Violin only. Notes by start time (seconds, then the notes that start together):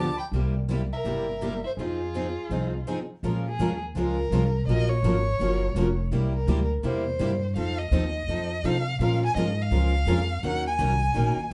Already playing: A5
0.19 G5
0.93 A#4
1.66 C5
1.81 F4
3.48 G#4
3.98 A#4
4.68 D#5
4.89 C#5
6.35 A#4
6.86 C5
7.57 F5
7.78 D#5
8.65 F5
9.01 F5
9.25 G#5
9.37 D#5
9.62 F5
10.46 F#5
10.67 G#5